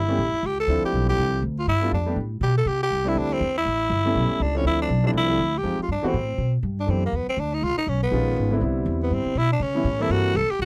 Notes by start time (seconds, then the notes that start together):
Already playing: G1 E4
0.08 G3 A3 B3 C#4 G4
0.18 A1
0.33 muted upright bass stroke
0.43 C#2 G4
0.60 A4
0.67 D2 F3 A3 C4 D4 E4
0.83 G4, muted upright bass stroke
0.93 B1
1.09 G4
1.18 C2
1.42 D2
1.59 F4
1.67 G2 E4
1.81 G3 A3 B3 D4 F4
1.92 F2 D4
2.06 G3 A3 B3 D4 G4
2.16 A2
2.41 B2 G4
2.58 A4
2.66 C3 G4
2.83 G4
2.91 C2
3.05 G3 A3 C4 D4 E4
3.15 D2 D4
3.33 C4
3.40 E2
3.58 E4
3.65 A1
3.90 G1
4.05 G3 A3 B3 C#4 E4
4.15 B1
4.30 muted upright bass stroke
4.40 C#2 D4
4.55 F3 A3 C4 C#4 D4 E4
4.64 D2 E4
4.82 D4
4.89 B1
5.04 F3 A3 C4 D4 E4
5.13 C2
5.18 E4
5.28 F3 A3 C4 D4 E4
5.38 D2
5.57 G4
5.63 F2 F3 G#3 C4 D#4 G4
5.79 F4, muted upright bass stroke
5.88 G2 D4
6.02 E3 A3 B3 C4 F#4, muted upright bass stroke
6.08 C4
6.14 A2
6.38 B2
6.63 G2
6.80 D4
6.87 F#2 E3 A3 B3 C4 D4 G4
7.06 A#3
7.12 E2 B3
7.27 C4, muted upright bass stroke
7.37 D2 D4
7.54 D#4
7.62 C#2 F4
7.77 D#4, muted upright bass stroke
7.87 B1 C#4
8.03 B3
8.11 A#1 D#3 G#3 B3 C#4 F4
8.36 G#1
8.51 D3 G3 B3 C4 E4
8.61 C2 D3 G3 B3 C4 E4
8.86 E2
9.03 B3
9.11 G2 C4
9.25 muted upright bass stroke
9.35 B2 E4
9.52 D4
9.60 C#3 C#4
9.74 E3 G3 B3 C#4 E4
9.85 A2
9.99 E3 G3 A#3 C4 E4 A4
10.10 G2 F#4
10.35 C2 A4
10.49 G4, muted upright bass stroke
10.59 B1 F#4